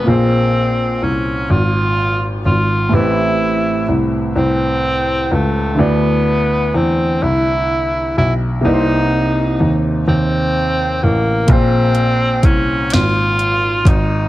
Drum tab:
HH |------|------|------|------|
SD |------|------|------|------|
BD |------|------|------|------|

HH |xxxxxx|
SD |---o--|
BD |o-o--o|